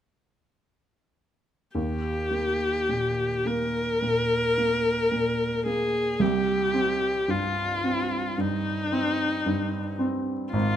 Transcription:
1.75 grand piano D#2, viola G4
2.31 grand piano A#3
2.89 grand piano A#2
3.45 grand piano A#3, viola A#4
4.02 grand piano A#2
4.58 grand piano A#3
5.11 grand piano A#2
5.66 grand piano A#3, viola G#4
6.19 grand piano C2, viola G4
6.74 grand piano C4
7.28 grand piano G2, viola F4
7.84 grand piano C4
8.38 grand piano G2, viola D#4
8.92 grand piano C4
9.46 grand piano G2
9.99 grand piano C4
10.53 grand piano G#1, viola F4

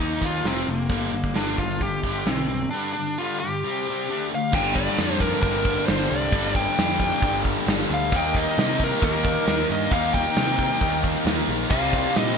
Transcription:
Already playing: distorted electric guitar D#3 D#4, lead electric guitar D#4
0.00 picked electric bass D#2, distorted electric guitar A#3
0.21 picked electric bass D#2, distorted electric guitar D#3 A#3 D#4, kick
0.26 lead electric guitar F4
0.44 picked electric bass F1, distorted electric guitar F2 C3 F3, lead electric guitar C4, snare, open hi-hat
0.67 picked electric bass F1, distorted electric guitar F2 C3, lead electric guitar A#3
0.89 picked electric bass G1, distorted electric guitar G2 D3 G3, kick, open hi-hat
1.12 picked electric bass G1, distorted electric guitar G2 D3
1.24 kick
1.35 picked electric bass G1, distorted electric guitar G2 D3 G3, lead electric guitar D4, snare, open hi-hat
1.58 picked electric bass G1, distorted electric guitar G2 D3, lead electric guitar F4, kick
1.81 picked electric bass G1, distorted electric guitar G2 D3, lead electric guitar G4, kick, open hi-hat
2.03 picked electric bass G1, distorted electric guitar G2 D3 G3, kick
2.26 picked electric bass B1, distorted electric guitar G2 D3, lead electric guitar C4, snare, open hi-hat
2.48 distorted electric guitar G2 D3, lead electric guitar C4
2.71 distorted electric guitar G2 D3 G3, lead electric guitar D4
2.93 distorted electric guitar G2 D3, lead electric guitar D4
3.18 distorted electric guitar G2 D3 G3, lead electric guitar F4
3.40 distorted electric guitar G2 D3, lead electric guitar G4
3.65 distorted electric guitar C3 G3 C4
3.89 distorted electric guitar C3 G3 C4
4.09 distorted electric guitar D3 A3 D4
4.33 distorted electric guitar D3 A3, lead electric guitar F5
4.53 picked electric bass G1, distorted electric guitar G2 D3 A#3 D4 G4, tonewheel organ G3 D4 A5, lead electric guitar G5, kick, crash
4.57 distorted electric guitar G3
4.75 lead electric guitar D5, kick, open hi-hat
4.98 picked electric bass F2, snare, open hi-hat
5.20 lead electric guitar A#4, kick, open hi-hat
5.42 picked electric bass G1, distorted electric guitar G2 D3 G3, lead electric guitar A#4, kick, open hi-hat
5.65 kick, open hi-hat
5.86 picked electric bass G1, lead electric guitar C5, snare, open hi-hat
6.10 picked electric bass C2, lead electric guitar D5, open hi-hat
6.32 picked electric bass G1, distorted electric guitar G2 D3 G3 A#3 D4 G4, kick, open hi-hat
6.55 lead electric guitar G5, kick, open hi-hat
6.78 picked electric bass F2, snare, open hi-hat
7.00 kick, open hi-hat
7.22 picked electric bass G1, distorted electric guitar G2 D3 G3, kick, open hi-hat
7.45 kick, open hi-hat
7.67 picked electric bass G1, snare, open hi-hat
7.90 picked electric bass D2, open hi-hat
7.94 lead electric guitar F5
8.11 picked electric bass D#2, distorted electric guitar D#3 G3, tonewheel organ D#4 A#4 F5, kick, open hi-hat
8.15 distorted electric guitar A#3 D#4 G4, lead electric guitar G5
8.34 lead electric guitar D#5, kick, open hi-hat
8.58 picked electric bass C3, snare, open hi-hat
8.80 kick, open hi-hat
8.84 lead electric guitar A#4
9.02 picked electric bass D#2, distorted electric guitar D#3 A#3 D#4, lead electric guitar A#4, kick, open hi-hat
9.25 kick, open hi-hat
9.47 picked electric bass D#2, snare, open hi-hat
9.69 picked electric bass G2, lead electric guitar D#5, open hi-hat
9.91 picked electric bass D#2, distorted electric guitar D#3 G3 A#3 D#4, lead electric guitar F5, kick, open hi-hat
9.95 distorted electric guitar G4
10.14 lead electric guitar G5, kick, open hi-hat
10.36 picked electric bass C3, snare, open hi-hat
10.58 kick, open hi-hat
10.81 picked electric bass D#2, distorted electric guitar D#3 A#3 D#4, kick, open hi-hat
11.04 kick, open hi-hat
11.25 picked electric bass D#2, snare, open hi-hat
11.48 picked electric bass A#1, open hi-hat
11.70 picked electric bass C2, distorted electric guitar C3 G3 D#4, tonewheel organ C4 D5, lead electric guitar F5, kick, crash
11.74 distorted electric guitar C4, tonewheel organ G4
11.93 kick, open hi-hat
12.15 picked electric bass A#2, lead electric guitar D#5, snare, open hi-hat

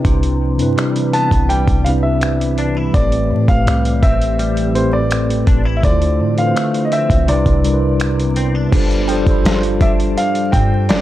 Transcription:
Already playing: tine electric piano C3 C4 D4 E4 B4, ambient pad C3 E3 G3 B4, clean electric guitar C4
0.05 808-style bass C2, clean electric guitar C3, kick, closed hi-hat
0.23 closed hi-hat
0.58 808-style bass G2, tine electric piano C3 C4 D4 E4, closed hi-hat
0.62 tine electric piano B4
0.77 clean electric guitar G3, finger snap, closed hi-hat
0.96 closed hi-hat
1.13 clean electric guitar B3, grand piano A5, closed hi-hat
1.31 808-style bass C2, kick, closed hi-hat
1.49 clean electric guitar G3, grand piano G5, closed hi-hat
1.67 808-style bass C2, kick, closed hi-hat
1.84 tine electric piano C3 C4 D4 E4, grand piano F5, closed hi-hat
1.89 tine electric piano B4
2.03 grand piano E5
2.21 finger snap, closed hi-hat
2.41 closed hi-hat
2.58 clean electric guitar D4, closed hi-hat
2.77 clean electric guitar E4
2.93 808-style bass A1, tine electric piano A2 A3 C4 G4, clean electric guitar A2, ambient pad A3 C4 G4, grand piano D5, kick, closed hi-hat
2.97 tine electric piano B4
3.12 closed hi-hat
3.30 808-style bass A2
3.47 808-style bass A1, tine electric piano A2 A3 C4 G4, grand piano F5, kick, closed hi-hat
3.51 tine electric piano B4
3.66 808-style bass C2, clean electric guitar G3, finger snap, closed hi-hat
3.85 closed hi-hat
4.03 808-style bass A1, clean electric guitar C4, grand piano E5, kick, closed hi-hat
4.21 closed hi-hat
4.39 clean electric guitar G3, closed hi-hat
4.57 closed hi-hat
4.74 tine electric piano A2 A3 C4 G4, grand piano C5, closed hi-hat
4.78 tine electric piano B4
4.93 grand piano D5
5.11 finger snap, closed hi-hat
5.30 closed hi-hat
5.47 808-style bass A1, clean electric guitar D4, kick, closed hi-hat
5.65 clean electric guitar E4
5.77 grand piano E5
5.82 808-style bass D2, tine electric piano D3 A3 E4 F4, ambient pad D3 F3 C4 D5, clean electric guitar D3, grand piano D5, kick, closed hi-hat
5.86 tine electric piano C5
6.02 closed hi-hat
6.19 808-style bass A2
6.36 tine electric piano D3 A3 D4 F4, grand piano F5, closed hi-hat
6.40 tine electric piano B4
6.47 tine electric piano C5
6.56 clean electric guitar A3, finger snap, closed hi-hat
6.74 closed hi-hat
6.85 grand piano D#5
6.92 clean electric guitar C4, grand piano E5, closed hi-hat
7.10 808-style bass C2, kick, closed hi-hat
7.27 tine electric piano C3 G3 D4 E4, ambient pad C3 B3 E4, clean electric guitar C3, grand piano D5, closed hi-hat
7.31 tine electric piano B4
7.46 808-style bass C2, kick, closed hi-hat
7.63 tine electric piano C3 G3 D4 E4, closed hi-hat
7.67 tine electric piano A#4
7.74 tine electric piano B4
8.00 finger snap, closed hi-hat
8.20 closed hi-hat
8.36 clean electric guitar C4, closed hi-hat
8.55 clean electric guitar D4
8.72 808-style bass G1, clean electric guitar G2 D4, tine electric piano G3 D4 F4 A4, ambient pad D4 F4 G4 D5, kick, closed hi-hat, crash
8.76 tine electric piano C5
8.91 closed hi-hat
9.07 clean electric guitar F3, tine electric piano G3 D4 F4 A4, synth pluck G5, closed hi-hat
9.11 tine electric piano C5
9.25 808-style bass G1, tine electric piano G3 D4 F4 A4 C5, kick, closed hi-hat
9.31 synth pluck B5
9.45 808-style bass G1, snare, closed hi-hat
9.56 synth pluck C6
9.63 closed hi-hat
9.81 808-style bass G1, clean electric guitar D4, grand piano E5, kick, closed hi-hat
10.00 closed hi-hat
10.18 grand piano F5, closed hi-hat
10.35 closed hi-hat
10.52 808-style bass G2, clean electric guitar C4, grand piano G5, kick, closed hi-hat
10.89 808-style bass F1, clean electric guitar D4, grand piano D5, snare, closed hi-hat

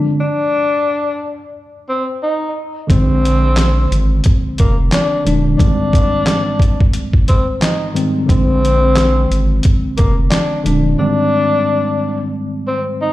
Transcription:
Already playing: tine electric piano D3 F3 G#3 D4
0.20 tenor saxophone D4
1.89 tenor saxophone C4
2.23 tenor saxophone D#4
2.87 sub bass A#1, tine electric piano D3 F3 G#3 C4, tenor saxophone C4, kick, closed hi-hat
3.25 closed hi-hat
3.57 snare, clap, closed hi-hat
3.91 sub bass G#1, closed hi-hat
4.24 kick, closed hi-hat
4.58 sub bass F1, tenor saxophone A#3, kick, closed hi-hat
4.92 tenor saxophone D4, snare, clap, closed hi-hat
5.24 sub bass D#1, tine electric piano D3 F3 G#3 D4, closed hi-hat
5.57 tine electric piano G#2 D#3 G3 G#3 C4, tenor saxophone D4, kick, closed hi-hat
5.93 kick, closed hi-hat
6.26 snare, clap, closed hi-hat
6.59 kick, closed hi-hat
6.80 kick
6.93 closed hi-hat
7.13 kick
7.28 tenor saxophone C4, kick, closed hi-hat
7.62 tenor saxophone D#4, snare, clap, closed hi-hat
7.93 tine electric piano G#2 D#3 G3 G#3 C4, closed hi-hat
8.26 sub bass A#1, tine electric piano D3 F3 G#3 C4, tenor saxophone C4, kick, closed hi-hat
8.65 closed hi-hat
8.96 snare, clap, closed hi-hat
9.30 sub bass G#1, closed hi-hat
9.63 kick, closed hi-hat
9.97 sub bass F1, tenor saxophone A#3, kick, closed hi-hat
10.30 tenor saxophone D4, snare, clap, closed hi-hat
10.64 sub bass D#1, tine electric piano D3 F3 G#3 D4, closed hi-hat
10.97 tine electric piano G#2 D#3 G3 G#3 C4, tenor saxophone D4
12.67 tenor saxophone C4
13.01 tenor saxophone D#4

